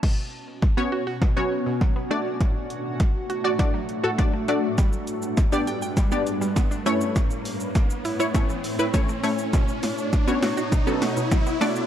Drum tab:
CC |x---------------|----------------|----------------|----------------|
HH |----------------|x-x-x-x-x-x-x-x-|x-x-x-x-x-x-x-x-|x-o-x-o-x-o-x-o-|
SH |----------------|----------------|xxxxxxxxxxxxxxxx|xxxxxxxxxxxxxxxx|
SD |o---o---o---o---|o---o---o---o---|o---o---o---o---|o---o---o---o---|
BD |o---o---o---o---|o---o---o---o---|o---o---o---o---|o---o---o---o---|

CC |----------------|
HH |x-o-x-o-x-o-x-o-|
SH |xxxxxxxxxxxxxxxx|
SD |o-o-o-o-o-o-o-o-|
BD |o---o---o---o---|